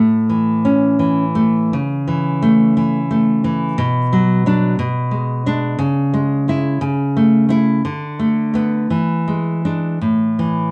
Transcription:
Already playing: A2 A3
0.30 E3
0.65 C#4
0.99 E3
1.35 A3
1.73 C#3
2.08 E3
2.42 A3
2.77 E3
3.11 A3
3.44 E3
3.78 B2
4.13 F#3
4.46 F#3 D4
4.79 B2
5.11 G#3
5.46 G#3 D4
5.79 C#3
6.14 G#3
6.48 G#3 E4
6.81 C#3
7.17 A3
7.49 A3 E4
7.85 D3
8.19 A3
8.54 A3 B3
8.90 E3
9.28 G#3
9.65 G#3 D4
10.02 A2
10.39 E3

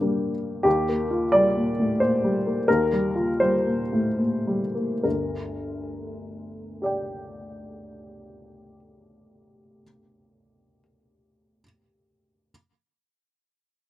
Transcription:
Already playing: G2 G4 G5
0.00 G3 A#3 D4
0.63 D#2 G4
0.89 A#3
1.11 F4
1.32 G3 D5
1.57 A#2
1.80 A2
2.00 A#2 C5
2.24 G3
2.46 A#3
2.68 D#2 A#4
2.93 G3
3.15 F4
3.40 G3 C5
3.67 A#2
3.93 A2
4.19 A#2
4.47 G3
4.75 A#3
5.03 G1 D2 A#4
6.82 G4 D5
6.86 G5

